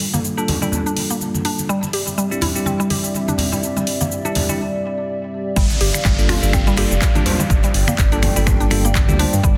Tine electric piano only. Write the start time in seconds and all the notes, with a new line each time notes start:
Already playing: G3 A#3 D4 F4 A4
0.38 G3 A#3 D4 F4 A4
0.62 G3 A#3 D4 F4 A4
2.31 G3 C4 D4 E4 G4
2.55 G3 C4 D4 E4 G4
4.25 G3 C4 D4 E4 G4
4.49 G3 C4 D4 E4 G4
6.19 G3 A#3 D4 F4 A4
6.43 G3 A#3 D4 F4 A4
6.77 G3 A#3 D4 F4 A4
7.15 G3 A#3 D4 F4 G4
7.26 G3 A#3 D4 F4 C5
8.12 G3 A#3 D4 F4 A4
8.36 G3 A#3 D4 F4 A4
8.71 G3 A#3 D4 F4 A4
9.09 G3 A#3 D4 F4 G4
9.19 G3 A#3 D4 F4 C5